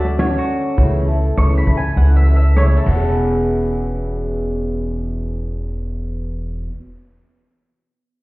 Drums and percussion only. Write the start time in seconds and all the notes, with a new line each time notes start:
0.05 snare
0.19 snare, closed hi-hat
0.49 closed hi-hat
0.78 kick, closed hi-hat
1.08 closed hi-hat
1.22 closed hi-hat
1.38 kick, cross-stick, closed hi-hat
1.67 kick, closed hi-hat
1.82 closed hi-hat
1.97 closed hi-hat
2.27 closed hi-hat
2.42 closed hi-hat
2.57 cross-stick, closed hi-hat
2.86 kick, ride